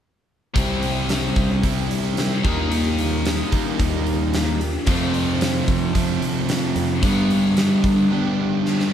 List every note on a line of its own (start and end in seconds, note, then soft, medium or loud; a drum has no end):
0.55 1.28 C2 medium
0.55 1.63 C3 medium
0.55 1.62 G3 medium
0.55 1.63 C4 medium
0.55 1.63 E4 medium
0.55 kick medium
0.55 open hi-hat medium
0.59 1.65 G4 medium
0.82 open hi-hat soft
1.09 snare medium
1.09 open hi-hat medium
1.36 1.61 C2 medium
1.36 kick medium
1.36 open hi-hat soft
1.63 1.88 C2 medium
1.63 2.43 C3 medium
1.63 2.44 G3 medium
1.63 2.45 C4 medium
1.63 2.45 E4 medium
1.63 2.42 G4 medium
1.63 kick medium
1.63 open hi-hat medium
1.91 open hi-hat soft
2.17 snare medium
2.17 open hi-hat medium
2.43 3.41 D#2 medium
2.43 3.50 D#3 medium
2.43 3.51 G3 medium
2.43 2.70 A#3 soft
2.43 3.50 D#4 medium
2.43 2.71 F4 soft
2.43 2.71 G4 soft
2.43 kick medium
2.43 open hi-hat soft
2.70 3.77 D#3 medium
2.70 3.78 A#3 medium
2.70 3.80 F4 medium
2.70 open hi-hat medium
2.74 3.79 G4 medium
2.98 open hi-hat soft
3.25 snare medium
3.25 open hi-hat medium
3.52 3.77 D#3 medium
3.52 4.60 D#3 medium
3.52 4.59 G3 medium
3.52 4.59 A#3 medium
3.52 4.58 D#4 medium
3.52 kick medium
3.52 open hi-hat soft
3.78 4.76 D#2 medium
3.78 4.60 D#3 medium
3.78 4.60 A#3 medium
3.78 4.60 F4 medium
3.78 4.59 G4 medium
3.78 kick medium
3.78 open hi-hat medium
4.07 open hi-hat soft
4.33 snare medium
4.33 open hi-hat medium
4.60 4.88 A#3 soft
4.60 4.88 F4 soft
4.60 4.87 G4 soft
4.60 open hi-hat soft
4.86 5.95 F2 medium
4.86 5.60 F2 medium
4.86 5.95 C3 medium
4.86 5.93 F3 medium
4.86 5.94 A3 medium
4.86 5.95 C4 medium
4.86 kick medium
4.86 open hi-hat medium
4.91 5.96 A4 medium
5.14 open hi-hat soft
5.41 snare loud
5.41 open hi-hat medium
5.68 5.93 F2 medium
5.68 kick medium
5.68 open hi-hat soft
5.94 7.01 F2 medium
5.94 6.19 F2 medium
5.94 7.01 C3 medium
5.94 6.76 F3 medium
5.94 6.76 A3 medium
5.94 6.75 C4 medium
5.94 6.75 A4 medium
5.94 kick medium
5.94 open hi-hat medium
6.22 open hi-hat soft
6.49 snare medium
6.49 open hi-hat medium
6.76 7.00 F2 medium
6.76 7.04 F3 soft
6.76 7.04 A3 soft
6.76 7.03 C4 soft
6.76 7.03 A4 soft
6.76 open hi-hat soft
7.03 8.11 G2 medium
7.03 7.75 G2 medium
7.03 8.11 D3 medium
7.03 8.09 G3 medium
7.03 8.10 B3 medium
7.03 8.11 D4 medium
7.03 8.12 G4 medium
7.03 kick loud
7.03 open hi-hat medium
7.30 open hi-hat soft
7.57 snare medium
7.57 open hi-hat medium
7.84 8.08 G3 medium
7.84 kick medium
7.84 open hi-hat soft
8.10 8.93 G2 medium
8.10 8.93 D3 medium
8.10 8.91 G3 medium
8.10 8.91 B3 medium
8.10 8.91 D4 medium
8.10 8.90 G4 medium
8.66 snare soft
8.80 snare soft